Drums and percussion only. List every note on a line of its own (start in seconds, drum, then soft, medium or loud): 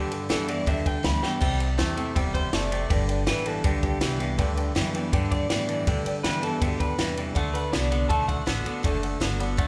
0.12 ride medium
0.30 snare loud
0.30 ride medium
0.48 ride medium
0.67 kick loud
0.67 ride medium
0.86 kick medium
0.86 ride medium
1.04 snare loud
1.04 ride medium
1.23 snare medium
1.42 kick loud
1.42 ride medium
1.42 crash medium
1.60 ride medium
1.79 snare loud
1.79 ride medium
1.97 ride medium
2.16 kick loud
2.16 ride medium
2.35 kick medium
2.35 ride medium
2.53 snare loud
2.53 ride medium
2.72 ride medium
2.90 kick loud
2.90 ride loud
3.09 ride medium
3.27 snare loud
3.27 ride loud
3.46 ride medium
3.64 kick loud
3.64 ride medium
3.83 kick medium
3.83 ride medium
4.01 snare loud
4.01 ride medium
4.20 ride medium
4.38 kick loud
4.38 ride medium
4.57 ride medium
4.76 snare loud
4.76 ride medium
4.95 ride medium
5.13 kick loud
5.13 ride medium
5.32 kick medium
5.32 ride medium
5.50 snare loud
5.50 ride medium
5.69 ride medium
5.87 kick loud
5.87 ride medium
6.06 ride medium
6.24 snare loud
6.24 ride loud
6.43 ride medium
6.62 kick loud
6.62 ride medium
6.80 kick medium
6.80 ride medium
6.99 snare loud
6.99 ride medium
7.17 ride medium
7.36 kick loud
7.36 ride medium
7.55 ride medium
7.73 snare loud
7.73 ride medium
7.92 ride medium
8.10 kick loud
8.10 ride medium
8.29 kick medium
8.29 ride medium
8.47 snare loud
8.47 ride medium
8.66 ride medium
8.84 kick loud
8.84 ride medium
9.03 ride medium
9.21 snare loud
9.21 ride medium
9.40 ride medium
9.58 kick loud
9.58 ride medium